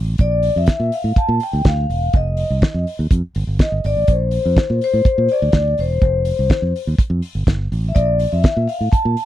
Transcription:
Already playing: A1
0.18 A#1 D5, kick, closed hi-hat
0.43 open hi-hat
0.56 F2 E5
0.67 kick, snare, closed hi-hat
0.80 A#2
0.92 F5, open hi-hat
1.04 A2
1.16 A5, kick, closed hi-hat
1.29 A#2
1.40 G5, open hi-hat
1.53 D2
1.65 D2 F5, kick, snare, closed hi-hat
1.89 E1, open hi-hat
2.13 F1 D#5, kick, closed hi-hat
2.37 open hi-hat
2.50 C2
2.62 kick, snare, closed hi-hat
2.74 F2
2.87 open hi-hat
2.99 D#2
3.11 F2, kick, closed hi-hat
3.35 G1, open hi-hat
3.47 G1
3.59 D#5, kick, snare, closed hi-hat
3.72 G1
3.84 G#1 D5, open hi-hat
3.97 A1
4.08 A#1 C5, kick, closed hi-hat
4.31 open hi-hat
4.46 F2
4.57 kick, snare, closed hi-hat
4.70 A#2
4.81 C5, open hi-hat
4.93 A2
5.05 kick, closed hi-hat
5.18 A#2
5.28 D5, open hi-hat
5.42 D2
5.52 D2, kick, snare, closed hi-hat
5.78 E1 C5, open hi-hat
6.02 F1, kick, closed hi-hat
6.25 open hi-hat
6.39 C2
6.50 muted fingered electric bass stroke, kick, snare, closed hi-hat
6.62 F2
6.76 open hi-hat
6.87 D#2
6.98 kick, closed hi-hat
7.10 F2
7.22 open hi-hat
7.35 G1
7.47 G1, kick, snare, closed hi-hat
7.72 A1, open hi-hat
7.89 E5
7.95 A#1 D5, kick, closed hi-hat
8.19 open hi-hat
8.32 F2 E5
8.44 kick, snare, closed hi-hat
8.57 A#2
8.68 F5, open hi-hat
8.81 A2
8.92 A5, muted fingered electric bass stroke, kick, closed hi-hat
9.05 A#2
9.17 open hi-hat

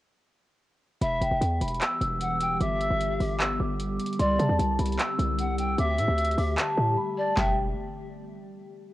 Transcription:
1.01 E1 E3 G3 B3 G4 E5 B5, closed hi-hat
1.21 E1 G5, closed hi-hat
1.31 E1
1.41 E2, closed hi-hat
1.61 E1 B5, closed hi-hat
1.68 closed hi-hat
1.74 closed hi-hat
1.80 E6, clap, closed hi-hat
2.01 E1 E6, closed hi-hat
2.21 F#5, closed hi-hat
2.41 G5, closed hi-hat
2.60 G1 D3 E5 D6, closed hi-hat
2.81 E6, closed hi-hat
2.90 G1
3.01 closed hi-hat
3.20 G1 D6, open hi-hat
3.39 E6, clap, closed hi-hat
3.60 G1 D6
3.80 closed hi-hat
3.99 closed hi-hat, open hi-hat
4.06 closed hi-hat
4.13 closed hi-hat
4.19 C2 C4 D5 C6, closed hi-hat
4.39 C3 A5, closed hi-hat
4.49 E2
4.59 C2, closed hi-hat
4.79 C2 B5, closed hi-hat
4.86 closed hi-hat
4.92 closed hi-hat
4.99 E6, clap, closed hi-hat
5.18 C2 E6, closed hi-hat
5.39 F#5, closed hi-hat
5.58 G5, closed hi-hat
5.78 D2 A3 G4 E5 D6, closed hi-hat
5.98 A2 E6, closed hi-hat
6.08 D2
6.18 closed hi-hat
6.25 closed hi-hat
6.31 closed hi-hat
6.38 D2 D6, open hi-hat
6.58 A5, clap, closed hi-hat
6.78 A2
6.97 B5
7.17 D5 A5
7.37 E1 E5 G5, kick, snare, clap

